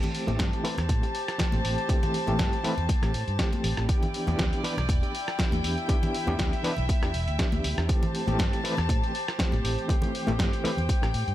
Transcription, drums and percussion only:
0.03 closed hi-hat, low conga
0.15 open hi-hat
0.28 closed hi-hat, high conga, low conga
0.39 kick, snare, closed hi-hat
0.53 closed hi-hat
0.65 open hi-hat
0.78 cross-stick, closed hi-hat, low conga
0.89 kick, closed hi-hat, high conga
1.03 closed hi-hat
1.15 open hi-hat
1.28 cross-stick, closed hi-hat
1.39 kick, snare, closed hi-hat
1.52 closed hi-hat, high conga
1.65 open hi-hat
1.78 closed hi-hat
1.89 kick, closed hi-hat
2.03 closed hi-hat, low conga
2.14 open hi-hat
2.27 closed hi-hat, high conga, low conga
2.39 kick, snare, closed hi-hat
2.53 closed hi-hat
2.64 open hi-hat
2.78 closed hi-hat, low conga
2.89 kick, closed hi-hat, high conga
3.03 cross-stick, closed hi-hat
3.14 open hi-hat
3.28 closed hi-hat
3.39 kick, snare, closed hi-hat
3.52 closed hi-hat, high conga
3.64 open hi-hat
3.77 cross-stick, closed hi-hat
3.89 kick, closed hi-hat
4.03 closed hi-hat, low conga
4.14 open hi-hat
4.27 closed hi-hat, high conga, low conga
4.39 kick, snare, closed hi-hat
4.53 closed hi-hat
4.64 open hi-hat
4.78 cross-stick, closed hi-hat, low conga
4.89 kick, closed hi-hat, high conga
5.03 closed hi-hat
5.15 open hi-hat
5.28 cross-stick, closed hi-hat
5.39 kick, snare, closed hi-hat
5.52 closed hi-hat, high conga
5.64 open hi-hat
5.78 closed hi-hat
5.89 kick, closed hi-hat
6.03 closed hi-hat, low conga
6.14 open hi-hat
6.27 closed hi-hat, high conga, low conga
6.39 kick, snare, closed hi-hat
6.53 closed hi-hat
6.64 open hi-hat
6.77 closed hi-hat, low conga
6.89 kick, closed hi-hat, high conga
7.03 cross-stick, closed hi-hat
7.14 open hi-hat
7.28 closed hi-hat
7.39 kick, snare, closed hi-hat
7.52 closed hi-hat, high conga
7.64 open hi-hat
7.78 cross-stick, closed hi-hat
7.89 kick, closed hi-hat
8.03 closed hi-hat, low conga
8.15 open hi-hat
8.27 closed hi-hat, high conga, low conga
8.39 kick, snare, closed hi-hat
8.53 closed hi-hat
8.65 open hi-hat
8.77 cross-stick, closed hi-hat, low conga
8.89 kick, closed hi-hat, high conga
9.04 closed hi-hat
9.15 open hi-hat
9.28 cross-stick, closed hi-hat
9.39 kick, snare, closed hi-hat
9.52 closed hi-hat, high conga
9.65 open hi-hat
9.78 closed hi-hat
9.89 kick, closed hi-hat
10.02 closed hi-hat, low conga
10.15 open hi-hat
10.27 closed hi-hat, high conga, low conga
10.39 kick, snare, closed hi-hat
10.53 closed hi-hat
10.65 open hi-hat
10.78 closed hi-hat, low conga
10.89 kick, closed hi-hat, high conga
11.03 cross-stick, closed hi-hat
11.14 open hi-hat
11.28 closed hi-hat

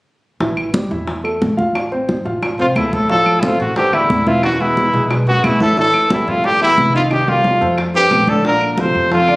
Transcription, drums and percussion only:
0.40 high bongo, high conga
0.57 high bongo, high conga, claves
0.74 high bongo, high conga
0.91 high bongo, high conga
1.08 high bongo, high conga
1.25 high bongo, high conga, claves
1.42 high bongo, low bongo, high conga
1.59 high conga
1.75 high bongo, high conga, claves
1.92 high bongo, high conga
2.09 high bongo, high conga
2.26 high bongo
2.42 high bongo, high conga, claves
2.59 high bongo, high conga
2.76 high bongo, low bongo, high conga, claves
2.93 high conga
3.09 high bongo, high conga
3.26 high bongo, high conga, claves
3.43 high bongo, high conga
3.60 high bongo, high conga
3.76 high bongo, high conga
3.93 high bongo, high conga, claves
4.10 high bongo, low bongo, high conga
4.27 high conga
4.43 high bongo, high conga, claves
4.60 high bongo, high conga
4.77 high bongo, high conga
4.94 high bongo
5.10 high bongo, high conga, claves
5.27 high bongo, high conga
5.44 high bongo, low bongo, high conga, claves
5.60 high conga
5.77 high bongo, high conga
5.94 high bongo, high conga, claves
6.10 high bongo, high conga
6.28 high bongo, high conga
6.44 high bongo, high conga
6.61 high bongo, high conga, claves
6.78 high bongo, low bongo, high conga
7.11 high bongo, high conga, claves
7.28 high bongo, high conga
7.44 high bongo, high conga
7.61 high bongo
7.78 high bongo, high conga, claves
7.94 high bongo, high conga
8.11 high bongo, low bongo, high conga, claves
8.27 high conga
8.44 high bongo, high conga
8.61 high bongo, high conga, claves
8.78 high bongo, high conga
8.94 high bongo, high conga
9.11 high bongo, high conga
9.28 high bongo, high conga, claves

